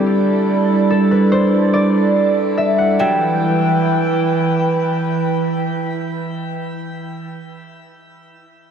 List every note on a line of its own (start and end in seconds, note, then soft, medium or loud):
0.00 1.97 G3 medium
0.00 2.96 G3 medium
0.00 2.96 D4 medium
0.00 2.96 E4 medium
0.00 1.99 G4 loud
0.00 0.90 A4 medium
0.00 2.96 A4 medium
0.00 0.43 B4 medium
0.00 2.96 D5 medium
0.90 3.10 A4 medium
1.11 1.38 B4 medium
1.32 3.30 C5 loud
1.73 3.58 D5 medium
2.57 4.30 E5 medium
2.78 3.06 F#5 medium
2.99 7.11 E3 medium
2.99 7.27 F#3 medium
2.99 7.27 G3 medium
2.99 7.11 E4 medium
2.99 7.11 B4 medium
2.99 7.27 E5 medium
2.99 7.11 G5 medium
2.99 4.55 G5 medium